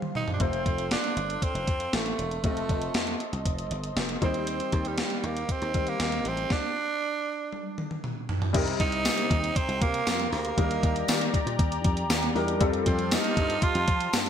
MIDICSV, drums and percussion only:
0, 0, Header, 1, 2, 480
1, 0, Start_track
1, 0, Tempo, 508475
1, 381, Time_signature, 4, 2, 24, 8
1, 13494, End_track
2, 0, Start_track
2, 0, Title_t, "Drums"
2, 22, Note_on_c, 9, 47, 57
2, 116, Note_off_c, 9, 47, 0
2, 144, Note_on_c, 9, 45, 81
2, 238, Note_off_c, 9, 45, 0
2, 261, Note_on_c, 9, 43, 83
2, 355, Note_off_c, 9, 43, 0
2, 377, Note_on_c, 9, 42, 79
2, 380, Note_on_c, 9, 36, 103
2, 472, Note_off_c, 9, 42, 0
2, 475, Note_off_c, 9, 36, 0
2, 501, Note_on_c, 9, 42, 48
2, 595, Note_off_c, 9, 42, 0
2, 622, Note_on_c, 9, 36, 86
2, 623, Note_on_c, 9, 42, 62
2, 716, Note_off_c, 9, 36, 0
2, 717, Note_off_c, 9, 42, 0
2, 740, Note_on_c, 9, 42, 48
2, 835, Note_off_c, 9, 42, 0
2, 860, Note_on_c, 9, 42, 76
2, 864, Note_on_c, 9, 38, 114
2, 954, Note_off_c, 9, 42, 0
2, 958, Note_off_c, 9, 38, 0
2, 980, Note_on_c, 9, 42, 49
2, 1074, Note_off_c, 9, 42, 0
2, 1104, Note_on_c, 9, 42, 68
2, 1199, Note_off_c, 9, 42, 0
2, 1227, Note_on_c, 9, 42, 51
2, 1321, Note_off_c, 9, 42, 0
2, 1340, Note_on_c, 9, 36, 90
2, 1344, Note_on_c, 9, 42, 90
2, 1435, Note_off_c, 9, 36, 0
2, 1438, Note_off_c, 9, 42, 0
2, 1466, Note_on_c, 9, 42, 52
2, 1560, Note_off_c, 9, 42, 0
2, 1581, Note_on_c, 9, 42, 70
2, 1582, Note_on_c, 9, 36, 91
2, 1676, Note_off_c, 9, 42, 0
2, 1677, Note_off_c, 9, 36, 0
2, 1699, Note_on_c, 9, 42, 53
2, 1794, Note_off_c, 9, 42, 0
2, 1823, Note_on_c, 9, 38, 94
2, 1825, Note_on_c, 9, 42, 79
2, 1918, Note_off_c, 9, 38, 0
2, 1920, Note_off_c, 9, 42, 0
2, 1943, Note_on_c, 9, 42, 42
2, 2038, Note_off_c, 9, 42, 0
2, 2067, Note_on_c, 9, 42, 59
2, 2161, Note_off_c, 9, 42, 0
2, 2184, Note_on_c, 9, 42, 47
2, 2279, Note_off_c, 9, 42, 0
2, 2301, Note_on_c, 9, 42, 78
2, 2302, Note_on_c, 9, 36, 104
2, 2395, Note_off_c, 9, 42, 0
2, 2397, Note_off_c, 9, 36, 0
2, 2425, Note_on_c, 9, 42, 47
2, 2519, Note_off_c, 9, 42, 0
2, 2542, Note_on_c, 9, 36, 83
2, 2542, Note_on_c, 9, 42, 66
2, 2637, Note_off_c, 9, 36, 0
2, 2637, Note_off_c, 9, 42, 0
2, 2658, Note_on_c, 9, 42, 51
2, 2753, Note_off_c, 9, 42, 0
2, 2779, Note_on_c, 9, 42, 79
2, 2783, Note_on_c, 9, 38, 114
2, 2873, Note_off_c, 9, 42, 0
2, 2877, Note_off_c, 9, 38, 0
2, 2898, Note_on_c, 9, 42, 53
2, 2992, Note_off_c, 9, 42, 0
2, 3023, Note_on_c, 9, 42, 65
2, 3117, Note_off_c, 9, 42, 0
2, 3144, Note_on_c, 9, 42, 53
2, 3238, Note_off_c, 9, 42, 0
2, 3261, Note_on_c, 9, 36, 93
2, 3262, Note_on_c, 9, 42, 96
2, 3355, Note_off_c, 9, 36, 0
2, 3356, Note_off_c, 9, 42, 0
2, 3385, Note_on_c, 9, 42, 53
2, 3479, Note_off_c, 9, 42, 0
2, 3502, Note_on_c, 9, 42, 67
2, 3596, Note_off_c, 9, 42, 0
2, 3621, Note_on_c, 9, 42, 55
2, 3715, Note_off_c, 9, 42, 0
2, 3744, Note_on_c, 9, 38, 96
2, 3745, Note_on_c, 9, 42, 81
2, 3838, Note_off_c, 9, 38, 0
2, 3840, Note_off_c, 9, 42, 0
2, 3861, Note_on_c, 9, 42, 44
2, 3956, Note_off_c, 9, 42, 0
2, 3982, Note_on_c, 9, 36, 88
2, 3982, Note_on_c, 9, 42, 59
2, 4076, Note_off_c, 9, 36, 0
2, 4077, Note_off_c, 9, 42, 0
2, 4099, Note_on_c, 9, 42, 45
2, 4193, Note_off_c, 9, 42, 0
2, 4220, Note_on_c, 9, 42, 82
2, 4314, Note_off_c, 9, 42, 0
2, 4342, Note_on_c, 9, 42, 49
2, 4437, Note_off_c, 9, 42, 0
2, 4460, Note_on_c, 9, 42, 65
2, 4462, Note_on_c, 9, 36, 90
2, 4554, Note_off_c, 9, 42, 0
2, 4556, Note_off_c, 9, 36, 0
2, 4577, Note_on_c, 9, 42, 51
2, 4672, Note_off_c, 9, 42, 0
2, 4697, Note_on_c, 9, 42, 83
2, 4701, Note_on_c, 9, 38, 106
2, 4791, Note_off_c, 9, 42, 0
2, 4796, Note_off_c, 9, 38, 0
2, 4815, Note_on_c, 9, 42, 50
2, 4910, Note_off_c, 9, 42, 0
2, 4943, Note_on_c, 9, 42, 65
2, 5038, Note_off_c, 9, 42, 0
2, 5065, Note_on_c, 9, 42, 54
2, 5160, Note_off_c, 9, 42, 0
2, 5181, Note_on_c, 9, 36, 93
2, 5182, Note_on_c, 9, 42, 95
2, 5275, Note_off_c, 9, 36, 0
2, 5276, Note_off_c, 9, 42, 0
2, 5303, Note_on_c, 9, 42, 48
2, 5398, Note_off_c, 9, 42, 0
2, 5420, Note_on_c, 9, 42, 66
2, 5423, Note_on_c, 9, 36, 91
2, 5515, Note_off_c, 9, 42, 0
2, 5518, Note_off_c, 9, 36, 0
2, 5538, Note_on_c, 9, 42, 52
2, 5633, Note_off_c, 9, 42, 0
2, 5661, Note_on_c, 9, 38, 89
2, 5663, Note_on_c, 9, 42, 77
2, 5756, Note_off_c, 9, 38, 0
2, 5757, Note_off_c, 9, 42, 0
2, 5779, Note_on_c, 9, 42, 45
2, 5873, Note_off_c, 9, 42, 0
2, 5901, Note_on_c, 9, 42, 60
2, 5995, Note_off_c, 9, 42, 0
2, 6015, Note_on_c, 9, 42, 44
2, 6110, Note_off_c, 9, 42, 0
2, 6138, Note_on_c, 9, 38, 83
2, 6141, Note_on_c, 9, 36, 95
2, 6233, Note_off_c, 9, 38, 0
2, 6235, Note_off_c, 9, 36, 0
2, 7103, Note_on_c, 9, 48, 50
2, 7198, Note_off_c, 9, 48, 0
2, 7345, Note_on_c, 9, 47, 67
2, 7439, Note_off_c, 9, 47, 0
2, 7466, Note_on_c, 9, 47, 62
2, 7560, Note_off_c, 9, 47, 0
2, 7588, Note_on_c, 9, 45, 81
2, 7683, Note_off_c, 9, 45, 0
2, 7826, Note_on_c, 9, 43, 92
2, 7921, Note_off_c, 9, 43, 0
2, 7947, Note_on_c, 9, 43, 87
2, 8041, Note_off_c, 9, 43, 0
2, 8066, Note_on_c, 9, 36, 110
2, 8066, Note_on_c, 9, 42, 87
2, 8066, Note_on_c, 9, 49, 94
2, 8160, Note_off_c, 9, 36, 0
2, 8160, Note_off_c, 9, 42, 0
2, 8161, Note_off_c, 9, 49, 0
2, 8189, Note_on_c, 9, 42, 50
2, 8283, Note_off_c, 9, 42, 0
2, 8306, Note_on_c, 9, 36, 93
2, 8306, Note_on_c, 9, 42, 69
2, 8400, Note_off_c, 9, 36, 0
2, 8401, Note_off_c, 9, 42, 0
2, 8423, Note_on_c, 9, 42, 53
2, 8518, Note_off_c, 9, 42, 0
2, 8544, Note_on_c, 9, 42, 85
2, 8545, Note_on_c, 9, 54, 89
2, 8548, Note_on_c, 9, 38, 121
2, 8639, Note_off_c, 9, 42, 0
2, 8640, Note_off_c, 9, 54, 0
2, 8643, Note_off_c, 9, 38, 0
2, 8662, Note_on_c, 9, 42, 57
2, 8756, Note_off_c, 9, 42, 0
2, 8784, Note_on_c, 9, 36, 91
2, 8787, Note_on_c, 9, 42, 68
2, 8879, Note_off_c, 9, 36, 0
2, 8882, Note_off_c, 9, 42, 0
2, 8909, Note_on_c, 9, 42, 58
2, 9004, Note_off_c, 9, 42, 0
2, 9024, Note_on_c, 9, 36, 99
2, 9026, Note_on_c, 9, 42, 102
2, 9118, Note_off_c, 9, 36, 0
2, 9120, Note_off_c, 9, 42, 0
2, 9147, Note_on_c, 9, 42, 57
2, 9241, Note_off_c, 9, 42, 0
2, 9266, Note_on_c, 9, 36, 97
2, 9266, Note_on_c, 9, 42, 77
2, 9360, Note_off_c, 9, 36, 0
2, 9361, Note_off_c, 9, 42, 0
2, 9384, Note_on_c, 9, 42, 61
2, 9478, Note_off_c, 9, 42, 0
2, 9503, Note_on_c, 9, 54, 63
2, 9504, Note_off_c, 9, 54, 0
2, 9504, Note_on_c, 9, 54, 76
2, 9506, Note_on_c, 9, 38, 99
2, 9508, Note_on_c, 9, 42, 83
2, 9598, Note_off_c, 9, 54, 0
2, 9600, Note_off_c, 9, 38, 0
2, 9602, Note_off_c, 9, 42, 0
2, 9624, Note_on_c, 9, 42, 49
2, 9718, Note_off_c, 9, 42, 0
2, 9747, Note_on_c, 9, 46, 64
2, 9841, Note_off_c, 9, 46, 0
2, 9862, Note_on_c, 9, 42, 50
2, 9957, Note_off_c, 9, 42, 0
2, 9984, Note_on_c, 9, 36, 110
2, 9985, Note_on_c, 9, 42, 85
2, 10079, Note_off_c, 9, 36, 0
2, 10079, Note_off_c, 9, 42, 0
2, 10108, Note_on_c, 9, 42, 54
2, 10202, Note_off_c, 9, 42, 0
2, 10225, Note_on_c, 9, 36, 92
2, 10227, Note_on_c, 9, 42, 76
2, 10319, Note_off_c, 9, 36, 0
2, 10321, Note_off_c, 9, 42, 0
2, 10345, Note_on_c, 9, 42, 52
2, 10440, Note_off_c, 9, 42, 0
2, 10461, Note_on_c, 9, 54, 87
2, 10464, Note_on_c, 9, 42, 88
2, 10465, Note_off_c, 9, 54, 0
2, 10465, Note_on_c, 9, 54, 71
2, 10468, Note_on_c, 9, 38, 112
2, 10559, Note_off_c, 9, 42, 0
2, 10559, Note_off_c, 9, 54, 0
2, 10563, Note_off_c, 9, 38, 0
2, 10585, Note_on_c, 9, 42, 56
2, 10680, Note_off_c, 9, 42, 0
2, 10704, Note_on_c, 9, 36, 93
2, 10708, Note_on_c, 9, 42, 70
2, 10798, Note_off_c, 9, 36, 0
2, 10802, Note_off_c, 9, 42, 0
2, 10827, Note_on_c, 9, 42, 60
2, 10921, Note_off_c, 9, 42, 0
2, 10941, Note_on_c, 9, 36, 106
2, 10943, Note_on_c, 9, 42, 103
2, 11035, Note_off_c, 9, 36, 0
2, 11038, Note_off_c, 9, 42, 0
2, 11063, Note_on_c, 9, 42, 56
2, 11158, Note_off_c, 9, 42, 0
2, 11181, Note_on_c, 9, 42, 74
2, 11183, Note_on_c, 9, 36, 98
2, 11276, Note_off_c, 9, 42, 0
2, 11278, Note_off_c, 9, 36, 0
2, 11299, Note_on_c, 9, 42, 57
2, 11393, Note_off_c, 9, 42, 0
2, 11420, Note_on_c, 9, 54, 63
2, 11421, Note_off_c, 9, 54, 0
2, 11421, Note_on_c, 9, 54, 79
2, 11423, Note_on_c, 9, 38, 103
2, 11425, Note_on_c, 9, 42, 89
2, 11515, Note_off_c, 9, 54, 0
2, 11518, Note_off_c, 9, 38, 0
2, 11519, Note_off_c, 9, 42, 0
2, 11542, Note_on_c, 9, 42, 49
2, 11636, Note_off_c, 9, 42, 0
2, 11665, Note_on_c, 9, 46, 63
2, 11760, Note_off_c, 9, 46, 0
2, 11782, Note_on_c, 9, 42, 52
2, 11877, Note_off_c, 9, 42, 0
2, 11900, Note_on_c, 9, 42, 86
2, 11901, Note_on_c, 9, 36, 107
2, 11994, Note_off_c, 9, 42, 0
2, 11995, Note_off_c, 9, 36, 0
2, 12021, Note_on_c, 9, 42, 52
2, 12116, Note_off_c, 9, 42, 0
2, 12141, Note_on_c, 9, 42, 75
2, 12142, Note_on_c, 9, 36, 88
2, 12235, Note_off_c, 9, 42, 0
2, 12236, Note_off_c, 9, 36, 0
2, 12259, Note_on_c, 9, 42, 51
2, 12353, Note_off_c, 9, 42, 0
2, 12380, Note_on_c, 9, 42, 85
2, 12380, Note_on_c, 9, 54, 67
2, 12384, Note_off_c, 9, 54, 0
2, 12384, Note_on_c, 9, 38, 119
2, 12384, Note_on_c, 9, 54, 88
2, 12474, Note_off_c, 9, 42, 0
2, 12478, Note_off_c, 9, 54, 0
2, 12479, Note_off_c, 9, 38, 0
2, 12501, Note_on_c, 9, 42, 54
2, 12595, Note_off_c, 9, 42, 0
2, 12621, Note_on_c, 9, 36, 89
2, 12622, Note_on_c, 9, 42, 68
2, 12715, Note_off_c, 9, 36, 0
2, 12716, Note_off_c, 9, 42, 0
2, 12742, Note_on_c, 9, 42, 61
2, 12836, Note_off_c, 9, 42, 0
2, 12857, Note_on_c, 9, 42, 103
2, 12858, Note_on_c, 9, 36, 97
2, 12951, Note_off_c, 9, 42, 0
2, 12953, Note_off_c, 9, 36, 0
2, 12980, Note_on_c, 9, 42, 56
2, 13074, Note_off_c, 9, 42, 0
2, 13099, Note_on_c, 9, 42, 72
2, 13101, Note_on_c, 9, 36, 93
2, 13194, Note_off_c, 9, 42, 0
2, 13196, Note_off_c, 9, 36, 0
2, 13221, Note_on_c, 9, 42, 58
2, 13315, Note_off_c, 9, 42, 0
2, 13338, Note_on_c, 9, 54, 79
2, 13341, Note_off_c, 9, 54, 0
2, 13341, Note_on_c, 9, 54, 65
2, 13344, Note_on_c, 9, 38, 100
2, 13346, Note_on_c, 9, 42, 85
2, 13436, Note_off_c, 9, 54, 0
2, 13438, Note_off_c, 9, 38, 0
2, 13440, Note_off_c, 9, 42, 0
2, 13463, Note_on_c, 9, 42, 47
2, 13494, Note_off_c, 9, 42, 0
2, 13494, End_track
0, 0, End_of_file